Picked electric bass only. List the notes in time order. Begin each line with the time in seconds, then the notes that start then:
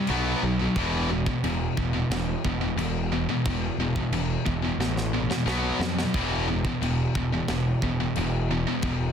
0.09 B1
0.43 B1
0.76 E1
1.44 E1
1.78 E1
2.10 E1
2.45 E1
2.76 E1
3.46 E1
3.78 E1
4.11 E1
4.47 E1
4.78 A1
5.46 B1
5.79 F2
6.14 E1
6.82 E1
7.16 E1
7.49 E1
7.82 E1
8.17 E1
8.83 E1